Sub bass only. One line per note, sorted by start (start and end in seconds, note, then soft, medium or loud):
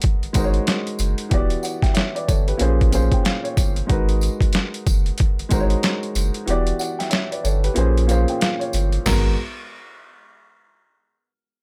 0.22 0.27 G#1 soft
0.35 0.59 G#1 loud
0.99 1.14 F#1 loud
1.31 1.56 E1 loud
2.29 2.53 G1 loud
2.61 3.09 A#1 loud
3.57 3.82 G1 medium
3.90 4.29 G#1 loud
4.87 5.11 F#1 loud
5.38 5.43 G#1 soft
5.51 5.76 G#1 loud
6.15 6.30 F#1 loud
6.48 6.72 E1 loud
7.45 7.69 G1 loud
7.77 8.26 A#1 loud
8.74 8.98 G1 medium
9.06 9.36 G#1 loud